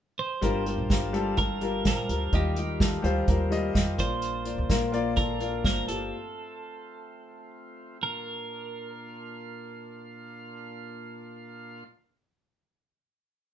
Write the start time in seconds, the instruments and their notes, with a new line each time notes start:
0.19 clean electric guitar C5
0.41 upright bass G1, grand piano G2 G3 F4 A#4, tonewheel organ G3 D4 F4 A#4 A5, kick, closed hi-hat
0.65 grand piano G3 F4 A#4, closed hi-hat
0.78 upright bass A#1
0.89 upright bass G1, grand piano G3 F4 A#4, kick, snare, closed hi-hat
1.13 grand piano G3 F4 A4, closed hi-hat
1.37 grand piano G3 F4 A#4, clean electric guitar A#4, kick, closed hi-hat
1.61 grand piano G3 F4 A#4, closed hi-hat
1.84 upright bass A#1, grand piano G3 F4 C5, clean electric guitar A#4, kick, snare, closed hi-hat
2.08 upright bass D2, grand piano G3 F4 A#4, closed hi-hat
2.32 upright bass D#2, tonewheel organ D#3 D#4 G4, grand piano D#3 G3 F4 D#5, clean electric guitar G4, kick, closed hi-hat
2.56 grand piano G3 F4 D#5, closed hi-hat
2.80 grand piano G3 F4 A4, kick, snare, closed hi-hat
3.02 upright bass D2, grand piano G3 F4 C5, closed hi-hat
3.27 upright bass D#2, grand piano G3 F4 A#4, kick, closed hi-hat
3.50 grand piano G3 F4 D#5, closed hi-hat
3.74 upright bass F2, grand piano G3 F4 D#5, kick, snare, closed hi-hat
3.98 upright bass A#1, grand piano A#2 A#3 F4 D5, tonewheel organ A#3 D4, clean electric guitar C5, kick, closed hi-hat
4.22 closed hi-hat
4.45 grand piano A#3 F4 D5, closed hi-hat
4.58 upright bass C2
4.69 upright bass A#1, grand piano A#3 F4 A#4, kick, snare, closed hi-hat
4.92 grand piano A#3 F4 D5, closed hi-hat
5.16 grand piano A#3 F4 A4, clean electric guitar A#4, kick, closed hi-hat
5.40 grand piano A#3 F4 D5, closed hi-hat
5.64 upright bass G1, grand piano A#3 F4 C5, clean electric guitar A#4, kick, snare, closed hi-hat
5.87 upright bass G1, grand piano A#3 F4 G4, clean electric guitar A4, closed hi-hat
6.11 tonewheel organ A3 C4
8.01 tonewheel organ A#2 A#3 D4 F4 F5, clean electric guitar A#4